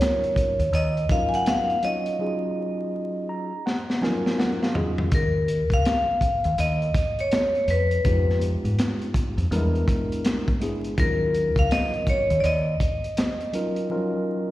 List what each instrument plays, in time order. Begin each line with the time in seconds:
Already playing: tine electric piano F#3 C#4 D#4 F4 A#4, vibraphone C#5
0.01 snare, closed hi-hat
0.24 closed hi-hat
0.36 kick, closed hi-hat
0.59 fingered electric bass D#2, closed hi-hat
0.73 fingered electric bass D#2, vibraphone D#5, closed hi-hat
0.97 closed hi-hat
1.09 tine electric piano F#3 C#4 D#4 F4 A#4, vibraphone F5, kick, closed hi-hat
1.29 vibraphone G#5
1.34 vibraphone F#5, closed hi-hat
1.46 vibraphone F5, snare, closed hi-hat
1.70 closed hi-hat
1.82 tine electric piano F#3 C#4 D#4 F4 C#5, vibraphone D#5, closed hi-hat
2.06 closed hi-hat
2.19 tine electric piano F#3 C#4 D#4 F4 G#4
3.29 tine electric piano A#5
3.66 tine electric piano F#5, snare
3.90 snare
4.01 tine electric piano F3 C#4 D#4 F4 A#4 G#5, snare
4.08 tine electric piano F#3
4.26 snare
4.39 tine electric piano F#5, snare
4.62 tine electric piano F5, snare
4.74 tine electric piano F#3 C#4 D#4 F4 G#4 D#5, floor tom
4.98 floor tom
5.12 fingered electric bass D#2, vibraphone A#4, kick, closed hi-hat
5.48 closed hi-hat
5.70 fingered electric bass C#2, vibraphone F5, kick, closed hi-hat
5.85 snare, closed hi-hat
6.21 kick, closed hi-hat
6.44 fingered electric bass D#2, closed hi-hat
6.58 fingered electric bass D#2, vibraphone D#5, closed hi-hat
6.82 closed hi-hat
6.94 kick, closed hi-hat
7.19 vibraphone C#5, closed hi-hat
7.31 snare, closed hi-hat
7.55 closed hi-hat
7.68 fingered electric bass F2, vibraphone B4, closed hi-hat
7.91 closed hi-hat
8.04 fingered electric bass F2, tine electric piano G#3 B3 D#4 F4 G4, kick, closed hi-hat
8.30 snare
8.41 closed hi-hat
8.65 fingered electric bass G#2, closed hi-hat
8.79 snare, closed hi-hat
9.01 closed hi-hat
9.14 kick, closed hi-hat
9.38 fingered electric bass F2, closed hi-hat
9.51 fingered electric bass E2, tine electric piano G3 B3 D4 E4 A#4, closed hi-hat
9.57 tine electric piano G#3
9.75 closed hi-hat
9.88 kick, closed hi-hat
10.12 closed hi-hat
10.25 snare, closed hi-hat
10.48 kick, closed hi-hat
10.60 tine electric piano G#3 B3 D4 E4 G#4, closed hi-hat
10.84 closed hi-hat
10.98 fingered electric bass D#2, tine electric piano F#3 C#4 D#4 F4 A#4, vibraphone A#4, kick, closed hi-hat
11.34 closed hi-hat
11.56 fingered electric bass C#2, vibraphone F5, kick, closed hi-hat
11.71 vibraphone D#5, snare, closed hi-hat
11.94 closed hi-hat
12.07 vibraphone C#5, kick, closed hi-hat
12.30 fingered electric bass D#2, closed hi-hat
12.40 fingered electric bass D#2, vibraphone D5, closed hi-hat
12.46 vibraphone D#5
12.80 kick, closed hi-hat
13.04 closed hi-hat
13.17 snare, closed hi-hat
13.41 closed hi-hat
13.53 tine electric piano F#3 C#4 D#4 F4 A#4, closed hi-hat
13.76 closed hi-hat
13.89 tine electric piano F3 C#4 D#4 F4 A#4
13.96 tine electric piano F#3